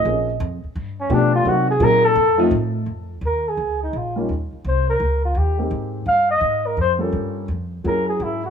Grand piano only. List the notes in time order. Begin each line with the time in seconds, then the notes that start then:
0.04 F3 A#3 C4 C#4 G#4
1.09 F3 A3 B3 D4 G4
1.44 F#3 A#3 C4 D#4 F#4
1.80 F#3 A#3 C4 D#4 G#4
2.38 F3 A3 C4 D#4 F4
4.16 G3 A#3 C#4 D#4 F4
5.57 G#3 A#3 C4 D#4 G4
6.99 G3 A#3 C#4 F4 A4
7.84 F#3 A#3 C#4 E4 G#4